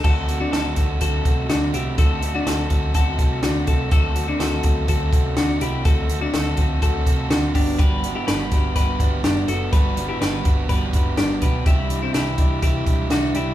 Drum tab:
CC |x-------|--------|--------|--------|
HH |-xxxxxxx|xxxxxxxx|xxxxxxxx|xxxxxxxo|
SD |--oo--o-|--o---o-|--o---o-|--o---o-|
BD |o--ooo--|o--ooo-o|o--ooo--|o--ooo-o|

CC |--------|--------|--------|
HH |xxxxxxxx|xxxxxxxx|xxxxxxxx|
SD |--oo--o-|--o---o-|--o---o-|
BD |o--ooo--|o--ooo-o|o--ooo--|